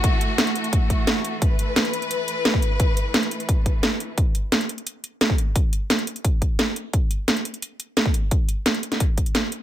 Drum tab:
HH |x-x-xxxxx-x-x-x-|x-x-xxxxx-x-x-x-|x-x-xxxxx-x-x-x-|x-x-xxxxx-x-x-x-|
SD |----o-------o---|----o-------o---|----o-------o---|----o-------o---|
BD |o-------o-o-----|o------------o--|o-------o-o-----|o------------o--|

HH |x-x-xxxxx-x-x-x-|x-x-xxxxx-x-x-x-|x-x-xxxxx-xxx-x-|
SD |----o-------o---|----o-------o---|----o--o----o---|
BD |o-------o-o-----|o------------o--|o-------o-o-----|